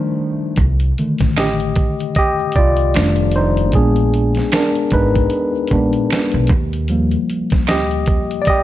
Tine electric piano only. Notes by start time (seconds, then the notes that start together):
Already playing: D#3 G3 A3 D4 D#4 C5
0.99 D3 D#3 A3
1.37 G4 D#5
2.16 G4 D#5
2.56 F4 D5
2.96 D#3 G3 A3 D4
3.36 D#4 C5
3.75 G#3 B3 D4 G#4
4.54 D4 A#4
4.93 D#4 B4
5.72 G#3 B3 D4
6.90 F3 G3 A#3
7.68 G4 D#5
8.42 D5
8.47 G4 D#5